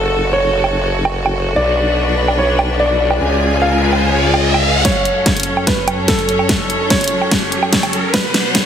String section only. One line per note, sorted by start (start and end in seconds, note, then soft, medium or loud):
0.00 3.17 F#4 medium
0.00 1.53 A4 medium
1.56 3.19 D4 medium
1.56 3.19 B4 medium
3.21 4.83 C#3 medium
3.21 4.83 G#3 medium
3.21 4.83 F4 medium
3.21 4.83 G#4 medium
3.21 4.83 G#5 medium
4.85 8.10 F#2 medium
4.85 8.66 F#3 medium
4.85 8.10 C#4 medium
4.85 8.10 A4 medium
4.85 8.10 C#5 medium
8.14 8.66 B2 medium
8.14 8.66 D4 medium
8.14 8.66 B4 medium
8.14 8.66 F#5 medium